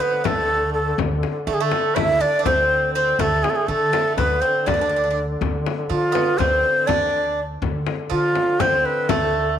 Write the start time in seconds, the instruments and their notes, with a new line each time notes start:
Already playing: duduk D3
0.00 bouzouki B3, ney B4
0.24 upright bass D2, bouzouki A3, ney A4, frame drum
0.74 ney A4
0.98 upright bass D2, frame drum
1.23 frame drum
1.47 upright bass D3, bouzouki A3, ney A4
1.54 ney G#4
1.61 bouzouki A3, ney A4
1.71 frame drum
1.96 upright bass D2, bouzouki E4, ney E5, frame drum
2.21 bouzouki D4, ney D5
2.39 bouzouki D4
2.45 upright bass D2, bouzouki C4, ney C5, frame drum
2.94 bouzouki C4, ney C5
3.19 upright bass D2, duduk D3, bouzouki A3, ney A4, frame drum
3.43 ney G#4, frame drum
3.50 ney A4
3.56 ney G#4
3.67 upright bass D3, bouzouki A3, ney A4
3.93 bouzouki A3, frame drum
4.17 upright bass D2, bouzouki B3, ney B4, frame drum
4.41 bouzouki C4, ney C5
4.66 upright bass D2, bouzouki D4, ney D5, frame drum
4.74 bouzouki D4
4.81 bouzouki D4
4.89 bouzouki D4
4.96 bouzouki D4
5.04 bouzouki D4
5.11 bouzouki D4
5.41 upright bass D2, frame drum
5.66 frame drum
5.90 upright bass D3, bouzouki F3, ney F4
6.12 bouzouki B3, frame drum
6.38 upright bass D2, bouzouki C4, ney C5, frame drum
6.87 upright bass D2, bouzouki D4, ney D5, frame drum
7.62 upright bass D2, duduk D3, frame drum
7.87 frame drum
8.10 upright bass D3, bouzouki F3, ney F4
8.35 frame drum
8.60 upright bass D2, bouzouki C4, ney C5, frame drum
8.86 ney B4
9.09 upright bass D2, bouzouki A3, ney A4, frame drum